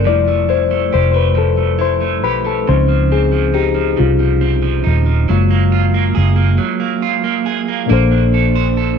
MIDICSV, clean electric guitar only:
0, 0, Header, 1, 2, 480
1, 0, Start_track
1, 0, Tempo, 869565
1, 34, Time_signature, 6, 3, 24, 8
1, 4960, End_track
2, 0, Start_track
2, 0, Title_t, "Clean electric guitar"
2, 0, Program_c, 0, 27
2, 0, Note_on_c, 0, 58, 77
2, 0, Note_on_c, 0, 62, 43
2, 0, Note_on_c, 0, 69, 61
2, 0, Note_on_c, 0, 72, 57
2, 29, Note_on_c, 0, 53, 86
2, 83, Note_off_c, 0, 58, 0
2, 85, Note_off_c, 0, 62, 0
2, 152, Note_on_c, 0, 57, 58
2, 269, Note_on_c, 0, 64, 53
2, 385, Note_off_c, 0, 57, 0
2, 392, Note_on_c, 0, 57, 66
2, 508, Note_off_c, 0, 69, 0
2, 511, Note_on_c, 0, 67, 61
2, 623, Note_off_c, 0, 57, 0
2, 630, Note_on_c, 0, 57, 53
2, 743, Note_off_c, 0, 53, 0
2, 745, Note_on_c, 0, 53, 68
2, 862, Note_off_c, 0, 57, 0
2, 869, Note_on_c, 0, 57, 48
2, 979, Note_off_c, 0, 64, 0
2, 986, Note_on_c, 0, 64, 64
2, 1104, Note_off_c, 0, 57, 0
2, 1110, Note_on_c, 0, 57, 58
2, 1232, Note_off_c, 0, 67, 0
2, 1238, Note_on_c, 0, 67, 57
2, 1348, Note_off_c, 0, 57, 0
2, 1354, Note_on_c, 0, 57, 49
2, 1474, Note_off_c, 0, 53, 0
2, 1476, Note_on_c, 0, 49, 77
2, 1493, Note_off_c, 0, 72, 0
2, 1518, Note_off_c, 0, 64, 0
2, 1522, Note_off_c, 0, 57, 0
2, 1524, Note_off_c, 0, 67, 0
2, 1592, Note_on_c, 0, 53, 53
2, 1720, Note_on_c, 0, 60, 59
2, 1830, Note_off_c, 0, 53, 0
2, 1832, Note_on_c, 0, 53, 65
2, 1953, Note_on_c, 0, 63, 62
2, 2065, Note_off_c, 0, 53, 0
2, 2067, Note_on_c, 0, 53, 52
2, 2185, Note_off_c, 0, 49, 0
2, 2192, Note_on_c, 0, 49, 70
2, 2312, Note_off_c, 0, 53, 0
2, 2314, Note_on_c, 0, 53, 59
2, 2428, Note_off_c, 0, 60, 0
2, 2435, Note_on_c, 0, 60, 66
2, 2551, Note_off_c, 0, 53, 0
2, 2553, Note_on_c, 0, 53, 66
2, 2664, Note_off_c, 0, 63, 0
2, 2671, Note_on_c, 0, 63, 65
2, 2791, Note_off_c, 0, 53, 0
2, 2794, Note_on_c, 0, 53, 48
2, 2917, Note_off_c, 0, 53, 0
2, 2919, Note_on_c, 0, 54, 87
2, 2960, Note_off_c, 0, 63, 0
2, 2961, Note_off_c, 0, 49, 0
2, 2962, Note_off_c, 0, 60, 0
2, 3038, Note_on_c, 0, 58, 57
2, 3158, Note_on_c, 0, 65, 61
2, 3278, Note_off_c, 0, 58, 0
2, 3280, Note_on_c, 0, 58, 66
2, 3394, Note_on_c, 0, 68, 64
2, 3508, Note_off_c, 0, 58, 0
2, 3510, Note_on_c, 0, 58, 52
2, 3626, Note_off_c, 0, 54, 0
2, 3632, Note_on_c, 0, 54, 70
2, 3751, Note_off_c, 0, 58, 0
2, 3753, Note_on_c, 0, 58, 60
2, 3875, Note_off_c, 0, 65, 0
2, 3877, Note_on_c, 0, 65, 60
2, 3993, Note_off_c, 0, 58, 0
2, 3996, Note_on_c, 0, 58, 68
2, 4110, Note_off_c, 0, 68, 0
2, 4117, Note_on_c, 0, 68, 63
2, 4239, Note_off_c, 0, 58, 0
2, 4241, Note_on_c, 0, 58, 47
2, 4357, Note_off_c, 0, 54, 0
2, 4359, Note_off_c, 0, 58, 0
2, 4359, Note_on_c, 0, 58, 87
2, 4403, Note_off_c, 0, 68, 0
2, 4479, Note_on_c, 0, 62, 60
2, 4600, Note_off_c, 0, 65, 0
2, 4603, Note_on_c, 0, 69, 57
2, 4722, Note_on_c, 0, 72, 65
2, 4839, Note_off_c, 0, 69, 0
2, 4842, Note_on_c, 0, 69, 53
2, 4954, Note_off_c, 0, 62, 0
2, 4960, Note_off_c, 0, 58, 0
2, 4960, Note_off_c, 0, 69, 0
2, 4960, Note_off_c, 0, 72, 0
2, 4960, End_track
0, 0, End_of_file